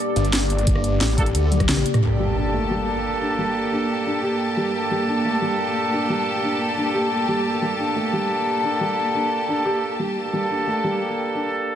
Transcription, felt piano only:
2.20 G3
2.36 D4
2.53 A3
2.70 G3
3.21 D4
3.38 G3
3.72 D4
4.06 D4
4.23 G4
4.57 G3
4.91 G3
5.08 D4
5.25 A3
5.42 G3
5.92 D4
6.09 G3
6.43 D4
6.77 D4
6.94 G4
7.28 G3
7.62 G3
7.79 D4
7.96 A3
8.13 G3
8.64 D4
8.81 G3
9.15 D4
9.48 D4
9.65 G4
9.99 G3
10.33 G3
10.50 D4
10.67 A3
10.84 G3
11.35 D4

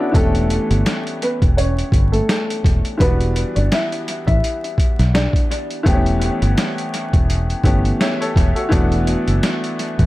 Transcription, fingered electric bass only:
0.15 E1
0.71 G1
1.42 E1
1.92 G1
2.65 E1
3.00 E1
3.56 G1
4.28 A1
4.99 B1
5.86 E1
6.42 G1
7.14 E1
7.64 G1
8.36 E1
8.72 E1
9.28 F#1
9.99 A1

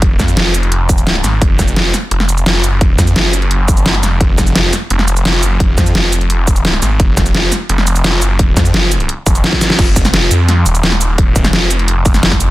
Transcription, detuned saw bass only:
Already playing: F#1
0.19 F2
0.37 F1
1.24 G#1
1.42 F1
1.59 F1
2.11 F1
2.64 F#1
2.98 F2
3.16 F#1
4.03 F1
4.21 F1
4.38 F1
4.90 F1
5.43 F#1
5.78 F2
5.95 F1
6.82 G#1
7.00 F1
7.17 F1
7.69 F1
8.22 F#1
8.57 F2
8.74 F#1
9.26 F1
9.79 F1
10.14 F1
10.31 F2
10.66 D#1
11.53 F1
11.71 F1
12.05 F1

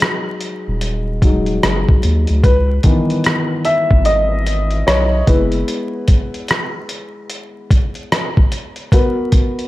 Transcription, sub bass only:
0.68 D#1
1.64 F#1
2.04 D#2
2.30 D2
2.44 C#2
3.91 G#1
4.88 B1
5.28 F#1

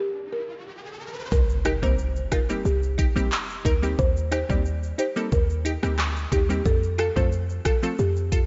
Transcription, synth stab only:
1.65 D#4 G4
1.82 G3 A#3 C4 D#4 A#4
2.31 D#4 F4
2.49 G3 A#3 C4 D#4 G4
2.98 D#4 G4
3.15 G3 A#3 C4 D#4 G4
3.65 D#4 A#4
3.82 G3 A#3 C4 D#4 G4
4.31 D#4 G4
4.49 G3 A#3 C4 D#4 G4
4.98 D#4 G4
5.16 G3 A#3 C4 D#4 A4
5.65 D#4 G4
5.83 G3 A#3 C4 D#4 G4
6.32 D#4 G4
6.49 G3 A#3 C4 D#4 G4
6.98 F4 A4
7.16 F3 A3 C4 F4 A4
7.65 F4 A4
7.83 F3 A3 C4 F4 A4
8.32 F4 A4

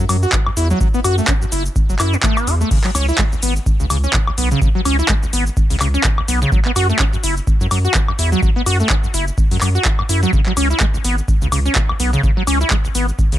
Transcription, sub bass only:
0.09 F#2
0.57 E2
1.04 F#2
1.52 F#1
1.89 F#1
2.00 F#2
2.47 E2
2.95 C#2
3.43 G#1
3.80 C#2
3.90 C#2
4.38 B1
4.85 C#2
5.33 G#1
5.70 C#2
5.81 C#2
6.28 B1
6.76 F#2
7.23 F#1
7.61 F#2
7.71 F#2
8.19 E2
8.66 F#2
9.14 F#1
9.51 F#2
9.62 F#2
10.09 F#2
10.57 C#2
11.04 G#1
11.42 C#2
11.52 C#2
12.00 B1
12.47 C#2
12.95 G#1
13.32 C#2

